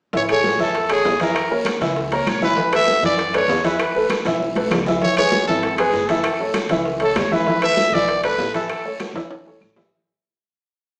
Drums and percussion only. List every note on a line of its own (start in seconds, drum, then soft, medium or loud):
0.13 high bongo medium
0.13 high conga soft
0.13 long guiro medium
0.29 high bongo soft
0.29 high conga soft
0.29 high timbale medium
0.29 claves medium
0.44 high bongo medium
0.44 high conga medium
0.44 short guiro medium
0.59 high bongo soft
0.59 high conga soft
0.59 short guiro medium
0.74 high bongo medium
0.74 high conga soft
0.74 high timbale medium
0.74 long guiro medium
0.90 high bongo soft
0.90 high conga soft
0.90 high timbale medium
0.90 claves medium
1.04 high bongo soft
1.04 low bongo medium
1.04 high conga soft
1.04 low timbale medium
1.04 short guiro medium
1.20 high timbale medium
1.20 short guiro medium
1.35 high bongo medium
1.35 high conga soft
1.35 high timbale medium
1.35 long guiro medium
1.35 claves medium
1.50 high bongo soft
1.50 high conga soft
1.65 high bongo medium
1.65 high conga medium
1.65 high timbale medium
1.65 short guiro medium
1.65 claves medium
1.81 high bongo soft
1.81 high conga soft
1.81 high timbale medium
1.81 short guiro medium
1.96 high bongo medium
1.96 high conga soft
1.96 long guiro medium
2.12 high bongo soft
2.12 high conga soft
2.12 high timbale medium
2.27 high bongo soft
2.27 low bongo medium
2.27 high conga medium
2.27 high timbale medium
2.27 short guiro medium
2.27 claves medium
2.42 high conga medium
2.42 short guiro medium
2.56 high bongo medium
2.56 high conga soft
2.56 long guiro medium
2.73 high bongo soft
2.73 high conga soft
2.73 high timbale medium
2.73 claves medium
2.87 high bongo medium
2.87 high conga medium
2.87 short guiro medium
3.02 high bongo soft
3.02 high conga soft
3.02 short guiro medium
3.17 high bongo medium
3.17 high conga soft
3.17 high timbale medium
3.34 high bongo soft
3.34 high conga soft
3.34 high timbale medium
3.34 claves medium
3.49 high bongo soft
3.49 low bongo medium
3.49 high conga soft
3.49 low timbale medium
3.49 short guiro medium
3.64 high timbale medium
3.64 short guiro medium
3.79 high bongo medium
3.79 high conga soft
3.79 high timbale loud
3.79 long guiro medium
3.79 claves medium
3.94 high bongo soft
3.94 high conga soft
4.10 high bongo medium
4.10 high conga medium
4.10 high timbale medium
4.10 short guiro medium
4.10 claves medium
4.25 low bongo loud
4.25 high conga soft
4.25 high timbale medium
4.25 short guiro medium
4.40 low bongo medium
4.40 high conga soft
4.40 long guiro medium
4.56 low bongo medium
4.56 high conga medium
4.56 high timbale medium
4.71 low bongo medium
4.71 low conga medium
4.71 high timbale medium
4.71 low timbale medium
4.71 short guiro medium
4.71 claves medium
4.86 low bongo medium
4.86 low conga medium
4.86 short guiro medium
5.01 high bongo medium
5.01 high conga soft
5.01 long guiro medium
5.17 high bongo soft
5.17 high conga soft
5.17 high timbale medium
5.17 claves medium
5.31 high bongo medium
5.31 high conga medium
5.31 short guiro medium
5.48 high bongo soft
5.48 high conga soft
5.48 short guiro medium
5.63 high bongo medium
5.63 high conga soft
5.63 high timbale medium
5.63 long guiro medium
5.78 high bongo soft
5.78 high conga soft
5.78 high timbale medium
5.78 claves medium
5.93 high bongo soft
5.93 low bongo medium
5.93 high conga soft
5.93 short guiro medium
6.09 high timbale medium
6.09 short guiro medium
6.23 high bongo medium
6.23 high conga soft
6.23 high timbale loud
6.23 long guiro medium
6.23 claves medium
6.39 high bongo soft
6.39 high conga soft
6.54 high bongo medium
6.54 high conga medium
6.54 high timbale loud
6.54 short guiro medium
6.54 claves medium
6.69 high bongo soft
6.69 high conga soft
6.69 high timbale medium
6.69 short guiro medium
6.85 high bongo medium
6.85 high conga soft
6.85 long guiro medium
7.00 high bongo soft
7.00 high conga soft
7.00 high timbale medium
7.16 high bongo soft
7.16 low bongo medium
7.16 high conga medium
7.16 high timbale medium
7.16 low timbale medium
7.16 short guiro medium
7.16 claves medium
7.31 high conga medium
7.31 short guiro medium
7.46 high bongo medium
7.46 high conga soft
7.46 long guiro medium
7.62 high bongo soft
7.62 high conga soft
7.62 high timbale medium
7.62 claves medium
7.77 high bongo medium
7.77 high conga medium
7.77 short guiro medium
7.93 high bongo soft
7.93 high conga soft
7.93 short guiro medium
8.08 high bongo medium
8.08 high conga soft
8.08 high timbale medium
8.08 long guiro medium
8.23 high bongo soft
8.23 high conga soft
8.23 high timbale medium
8.23 claves medium
8.39 high bongo soft
8.39 low bongo medium
8.39 high conga soft
8.39 low timbale medium
8.39 short guiro medium
8.54 high timbale medium
8.54 short guiro medium
8.69 high bongo medium
8.69 high conga soft
8.69 high timbale medium
8.69 long guiro medium
8.69 claves medium
8.85 high bongo soft
8.85 high conga soft
9.00 high bongo medium
9.00 high conga medium
9.00 high timbale medium
9.00 short guiro medium
9.00 claves medium
9.16 high bongo medium
9.16 high timbale loud
9.16 short guiro medium
9.31 high bongo medium
9.31 high timbale medium
9.45 low bongo loud
9.45 high conga soft
9.61 low bongo medium
9.61 high conga medium
9.61 short guiro medium
9.61 claves medium
9.76 low bongo medium
9.76 high conga medium
9.76 low timbale medium
9.76 short guiro medium